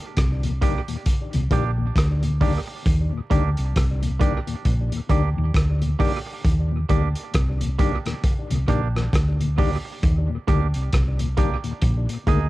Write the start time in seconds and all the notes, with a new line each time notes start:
0.17 C2, kick, cross-stick, closed hi-hat
0.43 D#2 A#2, closed hi-hat
0.61 D#3 G3 A#3 D4 G4, kick, closed hi-hat
0.88 D#2 A#2, closed hi-hat
1.06 kick, closed hi-hat
1.33 C2 D#2 A#2, closed hi-hat
1.51 A#1 D#3 G3 A#3 D4 G4, kick, closed hi-hat
1.78 D#2 A#2
1.96 D2, kick, cross-stick, closed hi-hat
2.23 D#2 A#2, closed hi-hat
2.41 D#3 G3 A#3 D4 G4, kick, open hi-hat
2.68 muted clean electric guitar stroke
2.86 D#2, kick, closed hi-hat
3.13 D#2 A#2
3.30 D2 D#3 G3 A#3 D4 G4, kick, closed hi-hat
3.57 C2, closed hi-hat
3.76 C2, kick, cross-stick, closed hi-hat
4.03 D#2 A#2, closed hi-hat
4.20 D#3 G3 A#3 D4 G4, kick, closed hi-hat
4.47 D#2 A#2, closed hi-hat
4.65 A#1, kick, closed hi-hat
4.92 D#2 A#2, closed hi-hat
5.09 D2 D#3 G3 A#3 D4 G4, kick, closed hi-hat
5.37 D#2 A#2
5.54 D2, kick, cross-stick, closed hi-hat
5.82 D#2 A#2, closed hi-hat
5.99 D#3 G3 A#3 D4 G4, kick, open hi-hat
6.26 muted clean electric guitar stroke
6.45 D#2, kick, closed hi-hat
6.71 D#2 A#2
6.89 D2 D#3 G3 A#3 D4 G4, kick, closed hi-hat
7.15 closed hi-hat
7.34 C2, kick, cross-stick, closed hi-hat
7.61 D#2 A#2, closed hi-hat
7.79 D#3 G3 A#3 D4 G4, kick, closed hi-hat
8.05 D#2 A#2, cross-stick, closed hi-hat
8.24 kick, closed hi-hat
8.50 C2 D#2 A#2, closed hi-hat
8.68 A#1 D#3 G3 A#3 D4 G4, kick, closed hi-hat
8.95 D#2 A#2, cross-stick
9.13 D2, kick, cross-stick, closed hi-hat
9.40 D#2 A#2, closed hi-hat
9.58 D#3 G3 A#3 D4 G4, kick, open hi-hat
9.85 muted clean electric guitar stroke
10.03 D#2, kick, closed hi-hat
10.29 D#2 A#2
10.47 D2 D#3 G3 A#3 D4 G4, kick, closed hi-hat
10.74 C2, closed hi-hat
10.93 C2, kick, cross-stick, closed hi-hat
11.19 D#2 A#2, closed hi-hat
11.37 D#3 G3 A#3 D4 G4, kick, closed hi-hat
11.64 D#2 A#2, closed hi-hat
11.82 A#1, kick, closed hi-hat
12.09 A#2, closed hi-hat
12.27 D2 D#3 G#3 A#3 D#4 G#4, kick, closed hi-hat